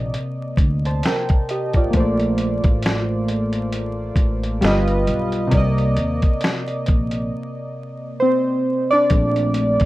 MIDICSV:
0, 0, Header, 1, 4, 480
1, 0, Start_track
1, 0, Tempo, 895522
1, 1038, Time_signature, 4, 2, 24, 8
1, 5282, End_track
2, 0, Start_track
2, 0, Title_t, "Synth keys"
2, 0, Program_c, 0, 88
2, 0, Control_c, 0, 64, 127
2, 0, Note_on_c, 0, 48, 69
2, 0, Note_on_c, 0, 58, 61
2, 0, Note_on_c, 0, 74, 63
2, 0, Note_on_c, 0, 75, 79
2, 305, Note_off_c, 0, 74, 0
2, 313, Note_off_c, 0, 75, 0
2, 461, Note_on_c, 0, 81, 59
2, 464, Note_on_c, 0, 72, 52
2, 555, Note_off_c, 0, 81, 0
2, 557, Note_off_c, 0, 72, 0
2, 568, Note_on_c, 0, 79, 66
2, 571, Note_on_c, 0, 70, 58
2, 792, Note_off_c, 0, 79, 0
2, 793, Note_off_c, 0, 70, 0
2, 807, Note_on_c, 0, 75, 66
2, 809, Note_on_c, 0, 67, 58
2, 934, Note_off_c, 0, 75, 0
2, 935, Note_off_c, 0, 67, 0
2, 945, Note_on_c, 0, 74, 60
2, 948, Note_on_c, 0, 65, 54
2, 1007, Note_off_c, 0, 48, 0
2, 1015, Note_off_c, 0, 58, 0
2, 1021, Note_on_c, 0, 58, 67
2, 1037, Note_on_c, 0, 57, 66
2, 1045, Control_c, 0, 64, 0
2, 1055, Note_on_c, 0, 72, 67
2, 1066, Note_off_c, 0, 74, 0
2, 1072, Note_on_c, 0, 74, 77
2, 1150, Control_c, 0, 64, 127
2, 1171, Note_off_c, 0, 65, 0
2, 2448, Note_off_c, 0, 58, 0
2, 2456, Note_off_c, 0, 57, 0
2, 2465, Note_off_c, 0, 72, 0
2, 2471, Note_on_c, 0, 55, 72
2, 2474, Note_off_c, 0, 74, 0
2, 2480, Note_on_c, 0, 65, 65
2, 2485, Control_c, 0, 64, 0
2, 2488, Note_on_c, 0, 71, 66
2, 2496, Note_on_c, 0, 75, 76
2, 2565, Control_c, 0, 64, 127
2, 2932, Note_on_c, 0, 48, 64
2, 2952, Note_on_c, 0, 58, 64
2, 2955, Note_off_c, 0, 55, 0
2, 2959, Note_off_c, 0, 65, 0
2, 2963, Note_off_c, 0, 71, 0
2, 2964, Control_c, 0, 64, 0
2, 2967, Note_off_c, 0, 75, 0
2, 2969, Note_on_c, 0, 74, 66
2, 2985, Note_on_c, 0, 75, 77
2, 3055, Control_c, 0, 64, 127
2, 4395, Note_on_c, 0, 72, 86
2, 4408, Note_on_c, 0, 60, 74
2, 4760, Note_off_c, 0, 60, 0
2, 4767, Note_off_c, 0, 74, 0
2, 4773, Note_on_c, 0, 74, 97
2, 4785, Note_on_c, 0, 62, 71
2, 4786, Note_off_c, 0, 72, 0
2, 4844, Note_off_c, 0, 48, 0
2, 4854, Note_off_c, 0, 58, 0
2, 4870, Note_off_c, 0, 75, 0
2, 4885, Note_off_c, 0, 62, 0
2, 4885, Control_c, 0, 64, 0
2, 4885, Note_on_c, 0, 57, 52
2, 4888, Note_on_c, 0, 60, 48
2, 4892, Note_on_c, 0, 62, 62
2, 4985, Control_c, 0, 64, 127
2, 5215, Note_off_c, 0, 57, 0
2, 5217, Note_off_c, 0, 60, 0
2, 5219, Note_off_c, 0, 62, 0
2, 5282, Note_off_c, 0, 74, 0
2, 5282, End_track
3, 0, Start_track
3, 0, Title_t, "Upright bass"
3, 0, Program_c, 1, 32
3, 0, Note_on_c, 1, 34, 82
3, 68, Note_off_c, 1, 34, 0
3, 308, Note_on_c, 1, 38, 85
3, 536, Note_off_c, 1, 38, 0
3, 936, Note_on_c, 1, 33, 75
3, 1031, Note_off_c, 1, 33, 0
3, 1041, Note_on_c, 1, 34, 98
3, 1397, Note_off_c, 1, 34, 0
3, 1418, Note_on_c, 1, 33, 81
3, 2217, Note_off_c, 1, 33, 0
3, 2230, Note_on_c, 1, 33, 82
3, 2458, Note_off_c, 1, 33, 0
3, 2478, Note_on_c, 1, 31, 100
3, 2702, Note_off_c, 1, 31, 0
3, 2720, Note_on_c, 1, 35, 84
3, 2943, Note_off_c, 1, 35, 0
3, 2962, Note_on_c, 1, 36, 105
3, 3184, Note_off_c, 1, 36, 0
3, 3201, Note_on_c, 1, 39, 90
3, 3329, Note_off_c, 1, 39, 0
3, 3691, Note_on_c, 1, 34, 76
3, 3909, Note_off_c, 1, 34, 0
3, 4882, Note_on_c, 1, 34, 107
3, 5237, Note_off_c, 1, 34, 0
3, 5259, Note_on_c, 1, 33, 79
3, 5282, Note_off_c, 1, 33, 0
3, 5282, End_track
4, 0, Start_track
4, 0, Title_t, "Drums"
4, 74, Note_on_c, 9, 42, 72
4, 128, Note_off_c, 9, 42, 0
4, 307, Note_on_c, 9, 36, 90
4, 313, Note_on_c, 9, 42, 67
4, 361, Note_off_c, 9, 36, 0
4, 366, Note_off_c, 9, 42, 0
4, 457, Note_on_c, 9, 42, 47
4, 511, Note_off_c, 9, 42, 0
4, 553, Note_on_c, 9, 42, 84
4, 566, Note_on_c, 9, 38, 118
4, 607, Note_off_c, 9, 42, 0
4, 619, Note_off_c, 9, 38, 0
4, 691, Note_on_c, 9, 42, 36
4, 696, Note_on_c, 9, 36, 96
4, 744, Note_off_c, 9, 42, 0
4, 750, Note_off_c, 9, 36, 0
4, 798, Note_on_c, 9, 42, 61
4, 852, Note_off_c, 9, 42, 0
4, 929, Note_on_c, 9, 42, 43
4, 934, Note_on_c, 9, 36, 77
4, 983, Note_off_c, 9, 42, 0
4, 987, Note_off_c, 9, 36, 0
4, 1036, Note_on_c, 9, 42, 75
4, 1039, Note_on_c, 9, 36, 99
4, 1089, Note_off_c, 9, 42, 0
4, 1092, Note_off_c, 9, 36, 0
4, 1177, Note_on_c, 9, 42, 34
4, 1230, Note_off_c, 9, 42, 0
4, 1275, Note_on_c, 9, 42, 68
4, 1329, Note_off_c, 9, 42, 0
4, 1414, Note_on_c, 9, 42, 46
4, 1417, Note_on_c, 9, 36, 97
4, 1467, Note_off_c, 9, 42, 0
4, 1470, Note_off_c, 9, 36, 0
4, 1514, Note_on_c, 9, 42, 83
4, 1533, Note_on_c, 9, 38, 106
4, 1568, Note_off_c, 9, 42, 0
4, 1586, Note_off_c, 9, 38, 0
4, 1760, Note_on_c, 9, 42, 67
4, 1814, Note_off_c, 9, 42, 0
4, 1890, Note_on_c, 9, 42, 46
4, 1944, Note_off_c, 9, 42, 0
4, 1996, Note_on_c, 9, 42, 77
4, 2050, Note_off_c, 9, 42, 0
4, 2228, Note_on_c, 9, 36, 91
4, 2233, Note_on_c, 9, 42, 65
4, 2282, Note_off_c, 9, 36, 0
4, 2286, Note_off_c, 9, 42, 0
4, 2377, Note_on_c, 9, 42, 46
4, 2431, Note_off_c, 9, 42, 0
4, 2477, Note_on_c, 9, 42, 77
4, 2490, Note_on_c, 9, 38, 106
4, 2530, Note_off_c, 9, 42, 0
4, 2543, Note_off_c, 9, 38, 0
4, 2614, Note_on_c, 9, 42, 33
4, 2667, Note_off_c, 9, 42, 0
4, 2720, Note_on_c, 9, 42, 63
4, 2773, Note_off_c, 9, 42, 0
4, 2852, Note_on_c, 9, 42, 45
4, 2906, Note_off_c, 9, 42, 0
4, 2956, Note_on_c, 9, 42, 80
4, 2960, Note_on_c, 9, 36, 91
4, 3009, Note_off_c, 9, 42, 0
4, 3014, Note_off_c, 9, 36, 0
4, 3099, Note_on_c, 9, 42, 31
4, 3153, Note_off_c, 9, 42, 0
4, 3198, Note_on_c, 9, 42, 69
4, 3251, Note_off_c, 9, 42, 0
4, 3335, Note_on_c, 9, 42, 45
4, 3338, Note_on_c, 9, 36, 90
4, 3389, Note_off_c, 9, 42, 0
4, 3392, Note_off_c, 9, 36, 0
4, 3434, Note_on_c, 9, 42, 78
4, 3452, Note_on_c, 9, 38, 102
4, 3488, Note_off_c, 9, 42, 0
4, 3506, Note_off_c, 9, 38, 0
4, 3579, Note_on_c, 9, 42, 34
4, 3632, Note_off_c, 9, 42, 0
4, 3679, Note_on_c, 9, 42, 67
4, 3690, Note_on_c, 9, 36, 93
4, 3732, Note_off_c, 9, 42, 0
4, 3743, Note_off_c, 9, 36, 0
4, 3812, Note_on_c, 9, 42, 48
4, 3866, Note_off_c, 9, 42, 0
4, 4877, Note_on_c, 9, 42, 83
4, 4881, Note_on_c, 9, 36, 101
4, 4930, Note_off_c, 9, 42, 0
4, 4934, Note_off_c, 9, 36, 0
4, 5017, Note_on_c, 9, 42, 34
4, 5071, Note_off_c, 9, 42, 0
4, 5115, Note_on_c, 9, 42, 69
4, 5168, Note_off_c, 9, 42, 0
4, 5251, Note_on_c, 9, 42, 45
4, 5258, Note_on_c, 9, 36, 97
4, 5282, Note_off_c, 9, 36, 0
4, 5282, Note_off_c, 9, 42, 0
4, 5282, End_track
0, 0, End_of_file